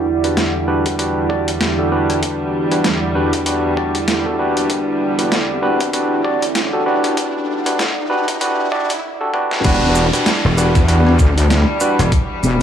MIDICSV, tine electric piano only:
0, 0, Header, 1, 2, 480
1, 0, Start_track
1, 0, Key_signature, 1, "minor"
1, 0, Tempo, 618557
1, 1726, Time_signature, 4, 2, 24, 8
1, 9796, End_track
2, 0, Start_track
2, 0, Title_t, "Tine electric piano"
2, 0, Program_c, 0, 4
2, 186, Note_on_c, 0, 62, 70
2, 186, Note_on_c, 0, 66, 63
2, 186, Note_on_c, 0, 67, 65
2, 187, Note_on_c, 0, 71, 80
2, 296, Note_off_c, 0, 62, 0
2, 296, Note_off_c, 0, 66, 0
2, 296, Note_off_c, 0, 67, 0
2, 296, Note_off_c, 0, 71, 0
2, 525, Note_on_c, 0, 71, 95
2, 526, Note_on_c, 0, 62, 84
2, 526, Note_on_c, 0, 66, 77
2, 527, Note_on_c, 0, 67, 78
2, 735, Note_off_c, 0, 71, 0
2, 736, Note_off_c, 0, 62, 0
2, 736, Note_off_c, 0, 66, 0
2, 736, Note_off_c, 0, 67, 0
2, 765, Note_on_c, 0, 62, 76
2, 765, Note_on_c, 0, 66, 74
2, 765, Note_on_c, 0, 67, 76
2, 765, Note_on_c, 0, 71, 82
2, 975, Note_off_c, 0, 66, 0
2, 975, Note_off_c, 0, 67, 0
2, 975, Note_off_c, 0, 71, 0
2, 976, Note_off_c, 0, 62, 0
2, 1004, Note_on_c, 0, 66, 74
2, 1004, Note_on_c, 0, 74, 92
2, 1005, Note_on_c, 0, 62, 81
2, 1005, Note_on_c, 0, 67, 73
2, 1152, Note_off_c, 0, 62, 0
2, 1152, Note_off_c, 0, 66, 0
2, 1152, Note_off_c, 0, 67, 0
2, 1152, Note_off_c, 0, 74, 0
2, 1387, Note_on_c, 0, 62, 78
2, 1387, Note_on_c, 0, 66, 70
2, 1387, Note_on_c, 0, 69, 85
2, 1388, Note_on_c, 0, 67, 69
2, 1462, Note_off_c, 0, 62, 0
2, 1462, Note_off_c, 0, 69, 0
2, 1463, Note_off_c, 0, 66, 0
2, 1463, Note_off_c, 0, 67, 0
2, 1487, Note_on_c, 0, 62, 81
2, 1487, Note_on_c, 0, 66, 71
2, 1488, Note_on_c, 0, 67, 74
2, 1488, Note_on_c, 0, 71, 92
2, 2073, Note_off_c, 0, 62, 0
2, 2073, Note_off_c, 0, 66, 0
2, 2073, Note_off_c, 0, 67, 0
2, 2073, Note_off_c, 0, 71, 0
2, 2107, Note_on_c, 0, 62, 74
2, 2107, Note_on_c, 0, 66, 68
2, 2107, Note_on_c, 0, 67, 66
2, 2108, Note_on_c, 0, 71, 81
2, 2216, Note_off_c, 0, 62, 0
2, 2216, Note_off_c, 0, 66, 0
2, 2216, Note_off_c, 0, 67, 0
2, 2217, Note_off_c, 0, 71, 0
2, 2446, Note_on_c, 0, 62, 86
2, 2446, Note_on_c, 0, 66, 78
2, 2446, Note_on_c, 0, 67, 79
2, 2446, Note_on_c, 0, 71, 97
2, 2656, Note_off_c, 0, 62, 0
2, 2656, Note_off_c, 0, 66, 0
2, 2656, Note_off_c, 0, 67, 0
2, 2656, Note_off_c, 0, 71, 0
2, 2684, Note_on_c, 0, 66, 78
2, 2685, Note_on_c, 0, 62, 78
2, 2685, Note_on_c, 0, 67, 76
2, 2685, Note_on_c, 0, 71, 88
2, 2895, Note_off_c, 0, 62, 0
2, 2895, Note_off_c, 0, 66, 0
2, 2895, Note_off_c, 0, 67, 0
2, 2895, Note_off_c, 0, 71, 0
2, 2924, Note_on_c, 0, 62, 79
2, 2924, Note_on_c, 0, 67, 80
2, 2925, Note_on_c, 0, 66, 74
2, 2925, Note_on_c, 0, 74, 90
2, 3071, Note_off_c, 0, 62, 0
2, 3072, Note_off_c, 0, 66, 0
2, 3072, Note_off_c, 0, 67, 0
2, 3072, Note_off_c, 0, 74, 0
2, 3303, Note_on_c, 0, 62, 76
2, 3303, Note_on_c, 0, 66, 72
2, 3303, Note_on_c, 0, 67, 71
2, 3303, Note_on_c, 0, 69, 84
2, 3380, Note_off_c, 0, 67, 0
2, 3381, Note_off_c, 0, 62, 0
2, 3381, Note_off_c, 0, 66, 0
2, 3381, Note_off_c, 0, 69, 0
2, 3406, Note_on_c, 0, 66, 75
2, 3406, Note_on_c, 0, 67, 73
2, 3407, Note_on_c, 0, 62, 77
2, 3407, Note_on_c, 0, 71, 89
2, 3992, Note_off_c, 0, 62, 0
2, 3992, Note_off_c, 0, 66, 0
2, 3992, Note_off_c, 0, 67, 0
2, 3993, Note_off_c, 0, 71, 0
2, 4024, Note_on_c, 0, 62, 73
2, 4024, Note_on_c, 0, 66, 66
2, 4024, Note_on_c, 0, 67, 70
2, 4024, Note_on_c, 0, 71, 83
2, 4135, Note_off_c, 0, 62, 0
2, 4135, Note_off_c, 0, 66, 0
2, 4135, Note_off_c, 0, 67, 0
2, 4135, Note_off_c, 0, 71, 0
2, 4365, Note_on_c, 0, 62, 85
2, 4365, Note_on_c, 0, 67, 78
2, 4365, Note_on_c, 0, 71, 101
2, 4366, Note_on_c, 0, 66, 82
2, 4575, Note_off_c, 0, 62, 0
2, 4575, Note_off_c, 0, 67, 0
2, 4575, Note_off_c, 0, 71, 0
2, 4576, Note_off_c, 0, 66, 0
2, 4606, Note_on_c, 0, 62, 79
2, 4606, Note_on_c, 0, 66, 75
2, 4606, Note_on_c, 0, 67, 73
2, 4606, Note_on_c, 0, 71, 88
2, 4816, Note_off_c, 0, 62, 0
2, 4816, Note_off_c, 0, 66, 0
2, 4816, Note_off_c, 0, 67, 0
2, 4816, Note_off_c, 0, 71, 0
2, 4843, Note_on_c, 0, 62, 84
2, 4843, Note_on_c, 0, 66, 81
2, 4844, Note_on_c, 0, 67, 74
2, 4844, Note_on_c, 0, 74, 94
2, 4991, Note_off_c, 0, 62, 0
2, 4991, Note_off_c, 0, 66, 0
2, 4991, Note_off_c, 0, 67, 0
2, 4992, Note_off_c, 0, 74, 0
2, 5224, Note_on_c, 0, 67, 75
2, 5224, Note_on_c, 0, 69, 85
2, 5225, Note_on_c, 0, 66, 76
2, 5226, Note_on_c, 0, 62, 78
2, 5301, Note_off_c, 0, 67, 0
2, 5301, Note_off_c, 0, 69, 0
2, 5302, Note_off_c, 0, 62, 0
2, 5302, Note_off_c, 0, 66, 0
2, 5324, Note_on_c, 0, 66, 76
2, 5325, Note_on_c, 0, 62, 81
2, 5325, Note_on_c, 0, 67, 79
2, 5325, Note_on_c, 0, 71, 94
2, 5911, Note_off_c, 0, 62, 0
2, 5911, Note_off_c, 0, 66, 0
2, 5911, Note_off_c, 0, 67, 0
2, 5911, Note_off_c, 0, 71, 0
2, 5943, Note_on_c, 0, 62, 77
2, 5944, Note_on_c, 0, 66, 72
2, 5944, Note_on_c, 0, 67, 66
2, 5944, Note_on_c, 0, 71, 84
2, 6054, Note_off_c, 0, 62, 0
2, 6055, Note_off_c, 0, 66, 0
2, 6055, Note_off_c, 0, 67, 0
2, 6055, Note_off_c, 0, 71, 0
2, 6284, Note_on_c, 0, 71, 101
2, 6285, Note_on_c, 0, 62, 87
2, 6285, Note_on_c, 0, 66, 82
2, 6285, Note_on_c, 0, 67, 81
2, 6495, Note_off_c, 0, 62, 0
2, 6495, Note_off_c, 0, 66, 0
2, 6495, Note_off_c, 0, 67, 0
2, 6495, Note_off_c, 0, 71, 0
2, 6526, Note_on_c, 0, 62, 85
2, 6526, Note_on_c, 0, 67, 77
2, 6526, Note_on_c, 0, 71, 92
2, 6527, Note_on_c, 0, 66, 80
2, 6736, Note_off_c, 0, 62, 0
2, 6736, Note_off_c, 0, 66, 0
2, 6736, Note_off_c, 0, 67, 0
2, 6736, Note_off_c, 0, 71, 0
2, 6764, Note_on_c, 0, 62, 90
2, 6764, Note_on_c, 0, 67, 79
2, 6764, Note_on_c, 0, 74, 98
2, 6765, Note_on_c, 0, 66, 80
2, 6912, Note_off_c, 0, 62, 0
2, 6912, Note_off_c, 0, 66, 0
2, 6912, Note_off_c, 0, 67, 0
2, 6912, Note_off_c, 0, 74, 0
2, 7144, Note_on_c, 0, 62, 84
2, 7144, Note_on_c, 0, 67, 75
2, 7145, Note_on_c, 0, 66, 75
2, 7145, Note_on_c, 0, 69, 94
2, 7221, Note_off_c, 0, 62, 0
2, 7221, Note_off_c, 0, 66, 0
2, 7221, Note_off_c, 0, 67, 0
2, 7222, Note_off_c, 0, 69, 0
2, 7244, Note_on_c, 0, 62, 86
2, 7244, Note_on_c, 0, 67, 72
2, 7245, Note_on_c, 0, 66, 80
2, 7246, Note_on_c, 0, 71, 88
2, 7475, Note_off_c, 0, 62, 0
2, 7475, Note_off_c, 0, 66, 0
2, 7475, Note_off_c, 0, 67, 0
2, 7475, Note_off_c, 0, 71, 0
2, 7484, Note_on_c, 0, 62, 104
2, 7484, Note_on_c, 0, 66, 91
2, 7484, Note_on_c, 0, 67, 92
2, 7484, Note_on_c, 0, 71, 106
2, 7809, Note_off_c, 0, 62, 0
2, 7809, Note_off_c, 0, 66, 0
2, 7809, Note_off_c, 0, 67, 0
2, 7809, Note_off_c, 0, 71, 0
2, 7862, Note_on_c, 0, 62, 76
2, 7862, Note_on_c, 0, 66, 71
2, 7862, Note_on_c, 0, 67, 69
2, 7862, Note_on_c, 0, 71, 80
2, 7974, Note_off_c, 0, 62, 0
2, 7974, Note_off_c, 0, 66, 0
2, 7974, Note_off_c, 0, 67, 0
2, 7974, Note_off_c, 0, 71, 0
2, 8203, Note_on_c, 0, 62, 89
2, 8203, Note_on_c, 0, 66, 79
2, 8203, Note_on_c, 0, 67, 78
2, 8203, Note_on_c, 0, 71, 96
2, 8414, Note_off_c, 0, 62, 0
2, 8414, Note_off_c, 0, 66, 0
2, 8414, Note_off_c, 0, 67, 0
2, 8414, Note_off_c, 0, 71, 0
2, 8442, Note_on_c, 0, 62, 81
2, 8442, Note_on_c, 0, 66, 79
2, 8442, Note_on_c, 0, 67, 72
2, 8442, Note_on_c, 0, 71, 94
2, 8654, Note_off_c, 0, 62, 0
2, 8654, Note_off_c, 0, 66, 0
2, 8654, Note_off_c, 0, 67, 0
2, 8654, Note_off_c, 0, 71, 0
2, 9165, Note_on_c, 0, 62, 90
2, 9165, Note_on_c, 0, 66, 86
2, 9165, Note_on_c, 0, 67, 83
2, 9165, Note_on_c, 0, 71, 103
2, 9312, Note_off_c, 0, 62, 0
2, 9312, Note_off_c, 0, 66, 0
2, 9312, Note_off_c, 0, 67, 0
2, 9312, Note_off_c, 0, 71, 0
2, 9796, End_track
0, 0, End_of_file